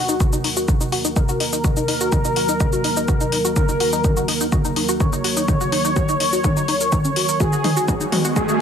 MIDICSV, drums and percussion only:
0, 0, Header, 1, 2, 480
1, 0, Start_track
1, 0, Key_signature, -6, "minor"
1, 0, Tempo, 480000
1, 1644, Time_signature, 4, 2, 24, 8
1, 8613, End_track
2, 0, Start_track
2, 0, Title_t, "Drums"
2, 87, Note_on_c, 9, 82, 55
2, 187, Note_off_c, 9, 82, 0
2, 202, Note_on_c, 9, 47, 49
2, 202, Note_on_c, 9, 82, 59
2, 204, Note_on_c, 9, 36, 114
2, 302, Note_off_c, 9, 47, 0
2, 302, Note_off_c, 9, 82, 0
2, 304, Note_off_c, 9, 36, 0
2, 327, Note_on_c, 9, 82, 58
2, 427, Note_off_c, 9, 82, 0
2, 443, Note_on_c, 9, 46, 99
2, 543, Note_off_c, 9, 46, 0
2, 568, Note_on_c, 9, 82, 58
2, 668, Note_off_c, 9, 82, 0
2, 684, Note_on_c, 9, 36, 114
2, 684, Note_on_c, 9, 47, 49
2, 684, Note_on_c, 9, 82, 56
2, 784, Note_off_c, 9, 36, 0
2, 784, Note_off_c, 9, 47, 0
2, 784, Note_off_c, 9, 82, 0
2, 808, Note_on_c, 9, 82, 57
2, 908, Note_off_c, 9, 82, 0
2, 923, Note_on_c, 9, 46, 100
2, 1023, Note_off_c, 9, 46, 0
2, 1048, Note_on_c, 9, 82, 56
2, 1148, Note_off_c, 9, 82, 0
2, 1163, Note_on_c, 9, 47, 51
2, 1163, Note_on_c, 9, 82, 55
2, 1164, Note_on_c, 9, 36, 117
2, 1263, Note_off_c, 9, 47, 0
2, 1263, Note_off_c, 9, 82, 0
2, 1264, Note_off_c, 9, 36, 0
2, 1287, Note_on_c, 9, 82, 56
2, 1387, Note_off_c, 9, 82, 0
2, 1403, Note_on_c, 9, 46, 103
2, 1503, Note_off_c, 9, 46, 0
2, 1527, Note_on_c, 9, 82, 57
2, 1627, Note_off_c, 9, 82, 0
2, 1643, Note_on_c, 9, 47, 53
2, 1643, Note_on_c, 9, 82, 57
2, 1644, Note_on_c, 9, 36, 119
2, 1743, Note_off_c, 9, 47, 0
2, 1743, Note_off_c, 9, 82, 0
2, 1744, Note_off_c, 9, 36, 0
2, 1767, Note_on_c, 9, 82, 57
2, 1867, Note_off_c, 9, 82, 0
2, 1882, Note_on_c, 9, 46, 108
2, 1982, Note_off_c, 9, 46, 0
2, 2007, Note_on_c, 9, 82, 54
2, 2107, Note_off_c, 9, 82, 0
2, 2122, Note_on_c, 9, 47, 53
2, 2122, Note_on_c, 9, 82, 57
2, 2124, Note_on_c, 9, 36, 121
2, 2222, Note_off_c, 9, 47, 0
2, 2222, Note_off_c, 9, 82, 0
2, 2224, Note_off_c, 9, 36, 0
2, 2246, Note_on_c, 9, 82, 54
2, 2346, Note_off_c, 9, 82, 0
2, 2362, Note_on_c, 9, 46, 105
2, 2462, Note_off_c, 9, 46, 0
2, 2486, Note_on_c, 9, 82, 57
2, 2586, Note_off_c, 9, 82, 0
2, 2603, Note_on_c, 9, 47, 51
2, 2603, Note_on_c, 9, 82, 54
2, 2604, Note_on_c, 9, 36, 122
2, 2703, Note_off_c, 9, 47, 0
2, 2703, Note_off_c, 9, 82, 0
2, 2704, Note_off_c, 9, 36, 0
2, 2727, Note_on_c, 9, 82, 55
2, 2827, Note_off_c, 9, 82, 0
2, 2842, Note_on_c, 9, 46, 107
2, 2942, Note_off_c, 9, 46, 0
2, 2967, Note_on_c, 9, 82, 55
2, 3067, Note_off_c, 9, 82, 0
2, 3082, Note_on_c, 9, 47, 57
2, 3082, Note_on_c, 9, 82, 56
2, 3084, Note_on_c, 9, 36, 123
2, 3182, Note_off_c, 9, 47, 0
2, 3182, Note_off_c, 9, 82, 0
2, 3184, Note_off_c, 9, 36, 0
2, 3207, Note_on_c, 9, 82, 56
2, 3307, Note_off_c, 9, 82, 0
2, 3322, Note_on_c, 9, 46, 109
2, 3422, Note_off_c, 9, 46, 0
2, 3447, Note_on_c, 9, 82, 56
2, 3547, Note_off_c, 9, 82, 0
2, 3562, Note_on_c, 9, 47, 59
2, 3562, Note_on_c, 9, 82, 55
2, 3563, Note_on_c, 9, 36, 118
2, 3662, Note_off_c, 9, 47, 0
2, 3662, Note_off_c, 9, 82, 0
2, 3663, Note_off_c, 9, 36, 0
2, 3687, Note_on_c, 9, 82, 56
2, 3787, Note_off_c, 9, 82, 0
2, 3802, Note_on_c, 9, 46, 109
2, 3903, Note_off_c, 9, 46, 0
2, 3927, Note_on_c, 9, 82, 52
2, 4027, Note_off_c, 9, 82, 0
2, 4043, Note_on_c, 9, 36, 123
2, 4043, Note_on_c, 9, 47, 62
2, 4043, Note_on_c, 9, 82, 55
2, 4143, Note_off_c, 9, 36, 0
2, 4143, Note_off_c, 9, 47, 0
2, 4143, Note_off_c, 9, 82, 0
2, 4168, Note_on_c, 9, 82, 54
2, 4268, Note_off_c, 9, 82, 0
2, 4283, Note_on_c, 9, 46, 106
2, 4383, Note_off_c, 9, 46, 0
2, 4408, Note_on_c, 9, 82, 54
2, 4508, Note_off_c, 9, 82, 0
2, 4524, Note_on_c, 9, 36, 119
2, 4524, Note_on_c, 9, 47, 60
2, 4524, Note_on_c, 9, 82, 52
2, 4624, Note_off_c, 9, 36, 0
2, 4624, Note_off_c, 9, 47, 0
2, 4624, Note_off_c, 9, 82, 0
2, 4648, Note_on_c, 9, 82, 54
2, 4748, Note_off_c, 9, 82, 0
2, 4763, Note_on_c, 9, 46, 109
2, 4863, Note_off_c, 9, 46, 0
2, 4887, Note_on_c, 9, 82, 55
2, 4987, Note_off_c, 9, 82, 0
2, 5004, Note_on_c, 9, 36, 125
2, 5004, Note_on_c, 9, 47, 66
2, 5004, Note_on_c, 9, 82, 54
2, 5104, Note_off_c, 9, 36, 0
2, 5104, Note_off_c, 9, 47, 0
2, 5104, Note_off_c, 9, 82, 0
2, 5128, Note_on_c, 9, 82, 55
2, 5228, Note_off_c, 9, 82, 0
2, 5244, Note_on_c, 9, 46, 110
2, 5344, Note_off_c, 9, 46, 0
2, 5368, Note_on_c, 9, 82, 54
2, 5468, Note_off_c, 9, 82, 0
2, 5484, Note_on_c, 9, 36, 122
2, 5484, Note_on_c, 9, 47, 67
2, 5484, Note_on_c, 9, 82, 53
2, 5584, Note_off_c, 9, 36, 0
2, 5584, Note_off_c, 9, 47, 0
2, 5584, Note_off_c, 9, 82, 0
2, 5608, Note_on_c, 9, 82, 53
2, 5708, Note_off_c, 9, 82, 0
2, 5723, Note_on_c, 9, 46, 107
2, 5823, Note_off_c, 9, 46, 0
2, 5848, Note_on_c, 9, 82, 52
2, 5948, Note_off_c, 9, 82, 0
2, 5964, Note_on_c, 9, 36, 118
2, 5964, Note_on_c, 9, 47, 68
2, 5964, Note_on_c, 9, 82, 54
2, 6063, Note_off_c, 9, 47, 0
2, 6063, Note_off_c, 9, 82, 0
2, 6064, Note_off_c, 9, 36, 0
2, 6087, Note_on_c, 9, 82, 52
2, 6187, Note_off_c, 9, 82, 0
2, 6202, Note_on_c, 9, 46, 108
2, 6302, Note_off_c, 9, 46, 0
2, 6327, Note_on_c, 9, 82, 53
2, 6427, Note_off_c, 9, 82, 0
2, 6442, Note_on_c, 9, 47, 66
2, 6442, Note_on_c, 9, 82, 52
2, 6444, Note_on_c, 9, 36, 123
2, 6542, Note_off_c, 9, 47, 0
2, 6542, Note_off_c, 9, 82, 0
2, 6544, Note_off_c, 9, 36, 0
2, 6567, Note_on_c, 9, 82, 53
2, 6667, Note_off_c, 9, 82, 0
2, 6682, Note_on_c, 9, 46, 107
2, 6782, Note_off_c, 9, 46, 0
2, 6806, Note_on_c, 9, 82, 52
2, 6906, Note_off_c, 9, 82, 0
2, 6922, Note_on_c, 9, 47, 71
2, 6922, Note_on_c, 9, 82, 53
2, 6923, Note_on_c, 9, 36, 122
2, 7022, Note_off_c, 9, 47, 0
2, 7022, Note_off_c, 9, 82, 0
2, 7023, Note_off_c, 9, 36, 0
2, 7046, Note_on_c, 9, 82, 53
2, 7146, Note_off_c, 9, 82, 0
2, 7162, Note_on_c, 9, 46, 108
2, 7262, Note_off_c, 9, 46, 0
2, 7286, Note_on_c, 9, 82, 55
2, 7386, Note_off_c, 9, 82, 0
2, 7403, Note_on_c, 9, 36, 116
2, 7403, Note_on_c, 9, 47, 76
2, 7403, Note_on_c, 9, 82, 54
2, 7503, Note_off_c, 9, 36, 0
2, 7503, Note_off_c, 9, 47, 0
2, 7503, Note_off_c, 9, 82, 0
2, 7527, Note_on_c, 9, 82, 54
2, 7627, Note_off_c, 9, 82, 0
2, 7643, Note_on_c, 9, 46, 104
2, 7643, Note_on_c, 9, 47, 76
2, 7743, Note_off_c, 9, 46, 0
2, 7743, Note_off_c, 9, 47, 0
2, 7767, Note_on_c, 9, 82, 52
2, 7867, Note_off_c, 9, 82, 0
2, 7883, Note_on_c, 9, 36, 117
2, 7883, Note_on_c, 9, 47, 75
2, 7883, Note_on_c, 9, 82, 54
2, 7983, Note_off_c, 9, 36, 0
2, 7983, Note_off_c, 9, 47, 0
2, 7983, Note_off_c, 9, 82, 0
2, 8007, Note_on_c, 9, 82, 53
2, 8107, Note_off_c, 9, 82, 0
2, 8123, Note_on_c, 9, 46, 106
2, 8123, Note_on_c, 9, 47, 77
2, 8223, Note_off_c, 9, 46, 0
2, 8223, Note_off_c, 9, 47, 0
2, 8247, Note_on_c, 9, 82, 54
2, 8347, Note_off_c, 9, 82, 0
2, 8363, Note_on_c, 9, 36, 116
2, 8363, Note_on_c, 9, 47, 75
2, 8363, Note_on_c, 9, 82, 52
2, 8463, Note_off_c, 9, 36, 0
2, 8463, Note_off_c, 9, 47, 0
2, 8463, Note_off_c, 9, 82, 0
2, 8487, Note_on_c, 9, 82, 54
2, 8587, Note_off_c, 9, 82, 0
2, 8613, End_track
0, 0, End_of_file